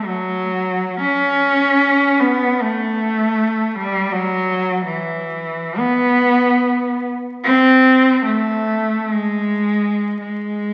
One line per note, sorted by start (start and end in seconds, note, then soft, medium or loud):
0.05 1.01 F#3 loud
1.00 2.18 C#4 loud
2.20 2.60 B3 loud
2.61 3.74 A3 loud
3.75 4.11 G3 loud
4.12 4.87 F#3 loud
4.85 5.76 E3 loud
5.78 7.01 B3 loud
7.44 8.21 C4 loud
8.25 9.13 A3 loud
9.14 10.19 G#3 medium
10.20 10.73 G#3 medium